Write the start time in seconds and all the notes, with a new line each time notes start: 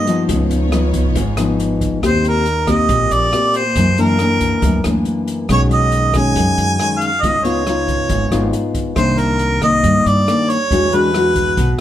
Already playing: G2 A#3 D#4 G4 C5 D#5
0.07 F3 B3 D#4, closed hi-hat
0.28 C#2 C#3 B3 D#4 F4 C#5, kick, closed hi-hat
0.51 closed hi-hat
0.72 F3 B3 D#4, cross-stick, closed hi-hat
0.94 kick, closed hi-hat
1.15 G#1 G#2, kick, closed hi-hat
1.37 F3 B3 D#4, cross-stick, closed hi-hat
1.60 closed hi-hat
1.81 kick, closed hi-hat
2.03 D#2 D#3 A#3 C4 G4 C5, kick, cross-stick, closed hi-hat
2.24 A#4, closed hi-hat
2.46 closed hi-hat
2.67 A#3 C4 G4 D#5, kick, cross-stick, closed hi-hat
2.89 A#1 A#2, kick, closed hi-hat
3.11 A#1 D5, closed hi-hat
3.33 A#3 C4 G4, cross-stick, closed hi-hat
3.54 C5, closed hi-hat
3.76 F#2 E3 A#3 D4, kick, closed hi-hat
3.98 E3 A#3 D4 A#4, closed hi-hat
4.19 E3 A#3 D4, cross-stick, closed hi-hat
4.40 kick, closed hi-hat
4.62 D2 F#2, kick, closed hi-hat
4.84 D2 E3 A#3 D4, cross-stick, closed hi-hat
5.05 closed hi-hat
5.28 closed hi-hat
5.49 B1 B2 D#3 G#3 C#4 C#5, kick, cross-stick, closed hi-hat
5.71 D#5, closed hi-hat
5.92 closed hi-hat
6.14 D#3 G#3 C#4 G#5, kick, cross-stick, closed hi-hat
6.36 F#2, kick, closed hi-hat
6.58 F#2, closed hi-hat
6.80 D#3 G#3 C#4, cross-stick, closed hi-hat
7.00 F5, closed hi-hat
7.22 C#2 C#3 B3 D#4 F4 D#5, kick, closed hi-hat
7.44 B3 D#4 F4 C#5, closed hi-hat
7.67 B3 D#4 F4, cross-stick, closed hi-hat
7.88 kick, closed hi-hat
8.09 G#1 G#2, kick, closed hi-hat
8.31 G#1 B3 D#4 F4, cross-stick, closed hi-hat
8.53 closed hi-hat
8.75 kick, closed hi-hat
8.96 C2 C3 D#3 A#3 D4 C5, kick, cross-stick, closed hi-hat
9.18 A#4, closed hi-hat
9.39 closed hi-hat
9.62 D#3 A#3 D#5, kick, cross-stick, closed hi-hat
9.84 G2, kick, closed hi-hat
10.06 G2 D5, closed hi-hat
10.28 D#3 A#3 D4, cross-stick, closed hi-hat
10.50 C#5, closed hi-hat
10.71 E2 E3 G#3 D4 F#4, kick, closed hi-hat
10.92 G#3 D4 F#4 B4, closed hi-hat
11.14 G#3 D4 F#4, cross-stick, closed hi-hat
11.36 kick, closed hi-hat
11.57 B1 B2, kick, closed hi-hat